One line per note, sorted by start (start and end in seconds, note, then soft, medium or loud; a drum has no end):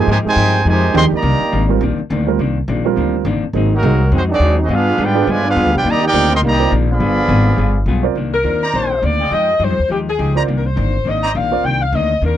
0.07 0.23 G#2 loud
0.07 0.16 C3 medium
0.07 0.15 D#3 medium
0.07 0.26 F3 medium
0.07 0.16 G#3 medium
0.07 0.26 G#3 medium
0.07 0.27 D#4 medium
0.07 0.17 D#4 medium
0.07 0.17 G4 medium
0.07 0.27 G4 medium
0.07 0.17 C5 medium
0.07 0.17 G#5 loud
0.24 0.62 C3 loud
0.24 0.62 D#3 medium
0.24 0.62 G#3 medium
0.24 muted upright bass stroke soft
0.28 0.65 D#4 loud
0.28 0.65 C5 loud
0.28 0.65 G5 loud
0.28 0.64 G#5 loud
0.36 0.64 G2 loud
0.36 0.55 F3 medium
0.36 0.55 G#3 medium
0.36 0.55 D#4 medium
0.36 0.56 G4 medium
0.64 0.93 F2 medium
0.64 0.92 C3 medium
0.64 0.92 D#3 medium
0.64 0.83 F3 medium
0.64 0.92 G#3 medium
0.64 0.84 G#3 medium
0.64 0.84 D#4 medium
0.64 0.85 G4 medium
0.69 0.94 D#4 medium
0.69 0.94 G4 loud
0.69 0.94 C5 loud
0.69 0.94 G#5 loud
0.94 1.10 D#2 loud
0.94 1.09 D#3 medium
0.94 1.02 D#3 medium
0.94 1.12 F3 medium
0.94 1.02 G#3 loud
0.94 1.13 G#3 medium
0.94 1.10 G#3 medium
0.94 1.02 C4 medium
0.94 1.10 D4 medium
0.94 1.13 D#4 medium
0.94 1.10 G4 medium
0.94 1.13 G4 medium
0.94 1.03 G#4 loud
0.94 1.03 D#5 loud
0.94 1.03 G5 loud
0.94 1.03 C6 loud
1.11 1.65 D#3 medium
1.11 1.65 G3 medium
1.11 1.65 A#3 medium
1.11 1.67 G4 medium
1.11 1.66 D5 loud
1.11 1.67 D#5 medium
1.11 1.67 A#5 loud
1.11 muted upright bass stroke soft
1.22 1.39 C2 loud
1.22 1.41 C3 medium
1.22 1.41 D#3 medium
1.22 1.42 A#3 medium
1.22 1.42 D4 medium
1.41 muted upright bass stroke soft
1.52 1.80 G#1 loud
1.52 1.70 C3 medium
1.52 1.70 D#3 medium
1.52 1.71 A#3 medium
1.52 1.71 D4 medium
1.69 1.79 G3 medium
1.69 1.80 C4 medium
1.69 1.80 F4 medium
1.69 1.81 A#4 medium
1.81 1.97 A#1 medium
1.81 1.99 C3 medium
1.81 2.00 D#3 medium
1.81 2.00 A#3 medium
1.81 2.01 D4 medium
1.98 muted upright bass stroke soft
2.10 2.38 D2 loud
2.10 2.28 C3 medium
2.10 2.29 D#3 medium
2.10 2.29 A#3 medium
2.10 2.29 D4 medium
2.27 2.37 G3 medium
2.27 2.38 C4 medium
2.27 2.38 F4 medium
2.27 2.38 A#4 medium
2.39 2.67 C2 medium
2.39 2.57 C3 medium
2.39 2.58 D#3 medium
2.39 2.58 A#3 medium
2.39 2.58 D4 medium
2.68 2.96 A#1 loud
2.68 2.86 C3 medium
2.68 2.86 D#3 medium
2.68 2.87 A#3 medium
2.68 2.87 D4 medium
2.85 3.23 G3 medium
2.85 3.23 C4 medium
2.85 3.23 F4 medium
2.85 3.24 A#4 medium
2.96 3.24 D2 medium
2.96 3.14 C3 medium
2.96 3.15 D#3 medium
2.96 3.15 A#3 medium
2.96 3.15 D4 medium
3.25 3.41 G1 loud
3.25 3.44 C3 medium
3.25 3.44 D#3 medium
3.25 3.44 A#3 medium
3.25 3.44 D4 medium
3.41 muted upright bass stroke soft
3.53 3.82 G#1 medium
3.53 3.73 G#2 medium
3.53 3.73 F#3 medium
3.53 3.69 A#3 medium
3.53 3.73 C4 medium
3.53 3.70 D#4 medium
3.53 3.74 D#4 medium
3.53 3.70 G#4 medium
3.53 3.70 C5 medium
3.71 4.09 D#3 medium
3.71 4.09 F#3 medium
3.71 4.11 G#3 medium
3.71 4.09 A#3 medium
3.71 4.10 D#4 medium
3.75 4.11 F#4 medium
3.75 4.11 A#4 medium
3.83 4.11 C2 loud
3.83 4.01 G#2 medium
3.83 4.02 F#3 medium
3.83 3.98 A#3 medium
3.83 4.02 C4 medium
3.83 3.99 D#4 medium
3.83 4.02 D#4 medium
3.83 3.99 G#4 medium
3.83 3.99 D#5 medium
4.11 4.39 F2 medium
4.11 4.29 G#2 medium
4.11 4.20 D#3 medium
4.11 4.30 F#3 medium
4.11 4.20 F#3 medium
4.11 4.30 C4 medium
4.11 4.20 C4 medium
4.11 4.31 D#4 medium
4.15 4.22 G#3 medium
4.15 4.22 D#4 medium
4.15 4.23 F#4 medium
4.15 4.22 C5 medium
4.29 4.55 D#3 medium
4.29 4.56 F#3 medium
4.29 4.57 C4 medium
4.29 4.56 D4 medium
4.29 4.57 F#4 medium
4.33 4.58 G#4 medium
4.33 4.58 D5 loud
4.40 4.68 D#2 loud
4.40 4.59 G#2 medium
4.40 4.59 F#3 medium
4.40 4.60 C4 medium
4.40 4.60 D#4 medium
4.58 4.70 F#3 medium
4.58 4.70 C4 medium
4.58 4.70 D#4 medium
4.63 4.72 C4 medium
4.63 4.72 F#4 medium
4.63 4.72 G#4 medium
4.63 4.72 D#5 medium
4.69 4.97 G2 medium
4.69 4.88 G3 medium
4.69 4.97 B3 medium
4.69 4.88 B3 medium
4.69 4.96 D4 medium
4.69 4.98 F4 medium
4.69 4.88 F4 medium
4.69 4.88 G#4 medium
4.74 5.01 D4 medium
4.74 5.01 G#4 medium
4.74 5.00 B4 medium
4.74 5.00 F5 loud
4.97 5.26 G#2 medium
4.97 5.16 G3 medium
4.97 5.16 B3 medium
4.97 5.27 B3 medium
4.97 5.27 D4 medium
4.97 5.17 F4 medium
4.97 5.27 G4 medium
4.97 5.17 G#4 medium
5.03 5.29 F4 medium
5.03 5.29 B4 medium
5.03 5.29 D5 medium
5.03 5.29 G5 medium
5.15 5.26 D4 medium
5.15 5.26 F4 medium
5.15 5.26 G#4 medium
5.15 5.26 B4 medium
5.26 5.55 G2 medium
5.26 5.44 D3 medium
5.26 5.44 F3 medium
5.26 5.45 G3 medium
5.26 5.44 G#3 medium
5.26 5.45 B3 medium
5.26 5.45 F4 medium
5.26 5.46 G#4 medium
5.30 5.46 F4 medium
5.30 5.46 B4 medium
5.30 5.46 D5 medium
5.30 5.45 G#5 loud
5.43 5.71 B3 loud
5.43 5.71 D4 loud
5.43 5.72 F4 loud
5.49 5.75 D4 medium
5.49 5.75 G#4 medium
5.49 5.75 B4 medium
5.49 5.75 F5 loud
5.55 5.65 F2 loud
5.55 5.73 G3 medium
5.55 5.74 B3 medium
5.55 5.74 F4 medium
5.55 5.75 G#4 medium
5.65 5.74 D2 medium
5.72 5.83 B1 medium
5.72 5.83 B3 medium
5.72 5.83 D4 medium
5.72 5.84 G4 medium
5.76 5.86 F4 medium
5.76 5.86 B4 medium
5.76 5.86 D5 medium
5.76 5.86 G5 loud
5.84 6.12 D#2 medium
5.84 6.03 C3 medium
5.84 6.01 D#3 loud
5.84 6.03 D#3 medium
5.84 6.01 G3 medium
5.84 5.99 A#3 loud
5.84 6.04 A#3 medium
5.84 6.04 D4 medium
5.89 6.04 G4 loud
5.89 6.04 D5 medium
5.89 6.04 D#5 loud
5.89 6.04 A#5 loud
6.00 6.28 A#3 medium
6.00 6.28 D#4 medium
6.00 6.28 G4 medium
6.06 6.31 D#4 medium
6.06 6.31 A#4 loud
6.06 6.31 D5 loud
6.06 6.31 G5 loud
6.13 6.41 D2 medium
6.13 6.31 C3 medium
6.13 6.32 D#3 medium
6.13 6.32 A#3 medium
6.13 6.29 C4 medium
6.13 6.32 D4 medium
6.13 6.29 F4 medium
6.13 6.29 A#4 medium
6.13 6.29 D5 medium
6.30 6.36 D#3 medium
6.30 6.36 G3 medium
6.30 6.36 C4 medium
6.35 6.39 A#4 loud
6.35 6.39 D#5 medium
6.35 6.39 G5 loud
6.35 6.39 C6 loud
6.42 6.70 C2 medium
6.42 6.61 C3 soft
6.42 6.69 D#3 loud
6.42 6.61 D#3 medium
6.42 6.69 G3 medium
6.42 6.69 A#3 medium
6.42 6.61 A#3 medium
6.42 6.62 D4 medium
6.47 6.72 G4 loud
6.47 6.72 D5 medium
6.47 6.72 D#5 medium
6.47 6.72 A#5 loud
6.59 6.70 C4 medium
6.59 6.70 F4 medium
6.59 6.70 A#4 medium
6.59 6.70 C5 medium
6.71 6.99 A#1 loud
6.71 6.89 C3 medium
6.71 6.89 D#3 medium
6.71 6.89 A#3 medium
6.71 6.90 D4 medium
6.89 7.83 D3 medium
6.89 7.83 F3 medium
6.89 7.83 B3 medium
6.89 7.85 G#4 medium
6.89 7.85 D5 medium
6.89 7.85 F5 loud
6.89 7.85 B5 loud
7.00 7.28 G1 medium
7.00 7.18 G3 medium
7.00 7.18 B3 medium
7.00 7.19 F4 medium
7.00 7.19 G#4 medium
7.27 7.57 G#1 loud
7.27 7.46 G3 medium
7.27 7.47 B3 medium
7.27 7.47 F4 medium
7.27 7.47 G#4 medium
7.57 7.85 G1 medium
7.57 7.75 G3 medium
7.57 7.76 B3 medium
7.57 7.76 F4 medium
7.57 7.76 G#4 medium
7.86 8.14 B1 medium
7.86 8.05 G3 medium
7.86 8.05 B3 medium
7.86 8.06 F4 medium
7.86 8.06 G#4 medium
8.03 8.14 C4 medium
8.03 8.14 F4 medium
8.03 8.15 A#4 medium
8.03 8.15 D5 medium
8.15 8.43 C2 medium
8.15 8.34 C3 medium
8.15 8.34 D#3 medium
8.15 8.35 A#3 medium
8.15 8.35 D4 medium
8.34 8.71 A#4 medium
8.43 8.72 D#2 medium
8.43 8.62 C3 medium
8.43 8.62 D#3 medium
8.43 8.63 A#3 medium
8.43 8.59 C4 medium
8.43 8.63 D4 medium
8.43 8.60 F4 soft
8.43 8.60 A#4 medium
8.43 8.60 D5 medium
8.61 9.00 D#4 medium
8.61 9.00 C5 medium
8.61 9.00 D5 medium
8.61 9.00 A#5 loud
8.73 9.02 A#1 medium
8.73 8.91 C3 soft
8.73 8.92 D#3 soft
8.73 8.92 A#3 soft
8.73 8.92 D4 medium
8.73 9.03 C5 medium
9.01 9.30 D2 medium
9.01 9.20 C3 medium
9.01 9.20 D#3 medium
9.01 9.21 A#3 medium
9.01 9.21 D4 medium
9.01 9.32 D5 loud
9.19 9.58 F4 medium
9.19 9.58 G#4 medium
9.19 9.58 D#5 medium
9.19 9.58 G5 medium
9.31 9.59 F2 medium
9.31 9.49 F3 soft
9.31 9.50 G#3 medium
9.31 9.50 D#4 soft
9.31 9.50 G4 medium
9.31 9.61 D#5 loud
9.60 9.70 G2 medium
9.60 9.78 F3 medium
9.60 9.78 G#3 medium
9.60 9.79 D#4 medium
9.60 9.79 G4 medium
9.64 9.91 C5 loud
9.70 9.79 F2 medium
9.79 9.88 D#2 medium
9.89 10.18 D#2 medium
9.89 10.07 F3 medium
9.89 10.08 G#3 soft
9.89 10.08 D#4 medium
9.89 10.08 G4 medium
9.89 9.99 G4 medium
10.09 10.35 G#4 medium
10.18 10.47 C#2 medium
10.18 10.37 F3 medium
10.18 10.37 G#3 medium
10.18 10.37 D#4 medium
10.18 10.37 G4 medium
10.35 10.46 C4 medium
10.35 10.43 D#4 medium
10.35 10.46 F4 medium
10.35 10.47 A#4 medium
10.35 10.43 C5 medium
10.35 10.43 D5 medium
10.35 10.47 D5 medium
10.35 10.43 A#5 loud
10.47 10.76 C2 medium
10.47 10.65 C3 medium
10.47 10.66 D#3 medium
10.47 10.66 A#3 medium
10.47 10.66 D4 medium
10.58 10.65 A#4 medium
10.67 11.06 C5 medium
10.76 11.05 G1 loud
10.76 10.95 C3 soft
10.76 10.94 D#3 medium
10.76 10.95 A#3 medium
10.76 10.95 D4 medium
11.05 11.34 G#1 medium
11.05 11.23 C3 medium
11.05 11.24 D#3 medium
11.05 11.24 A#3 medium
11.05 11.25 D4 medium
11.09 11.36 D#5 medium
11.23 11.31 D#4 loud
11.23 11.31 C5 medium
11.23 11.31 D5 medium
11.23 11.31 A#5 loud
11.34 11.63 A#1 medium
11.34 11.53 C3 medium
11.34 11.53 D#3 medium
11.34 11.53 A#3 medium
11.34 11.54 D4 medium
11.34 11.65 F5 medium
11.51 11.62 C4 medium
11.51 11.62 F4 medium
11.51 11.62 A#4 medium
11.51 11.63 D5 medium
11.63 11.91 C2 medium
11.63 11.82 C3 medium
11.63 11.83 D#3 medium
11.63 11.83 A#3 medium
11.63 11.83 D4 medium
11.63 11.82 G5 loud
11.82 11.93 F5 medium
11.92 12.21 D2 medium
11.92 12.11 C3 medium
11.92 12.11 D#3 medium
11.92 12.12 A#3 medium
11.92 12.12 D4 medium
11.92 12.23 D#5 loud
12.22 12.37 D#2 medium
12.22 12.37 C3 soft
12.22 12.37 D#3 medium
12.22 12.37 A#3 medium
12.22 12.37 D4 medium
12.22 12.37 A#4 medium